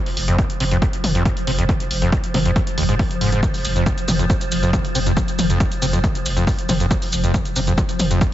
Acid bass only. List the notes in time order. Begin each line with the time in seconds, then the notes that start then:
0.28 F2
0.39 F1
0.60 C3
0.72 F2
0.82 F2
1.15 F2
1.26 F1
1.47 C3
1.58 F2
1.69 F2
2.02 F2
2.12 F1
2.34 C3
2.45 F2
2.56 F2
2.78 D#2
2.89 G#2
2.99 F2
3.21 G#2
3.32 G#2
3.43 F2
3.76 F2
3.86 F1
4.08 C3
4.19 F2
4.30 F2
4.63 F2
4.73 F1
4.95 C3
5.06 F2
5.17 F2
5.50 F2
5.60 F1
5.82 C3
5.93 F2
6.04 F2
6.37 F2
6.47 F1
6.69 C3
6.80 F2
6.91 F2
7.24 F2
7.34 F1
7.56 C3
7.67 F2
7.78 F2
8.11 F2
8.21 F1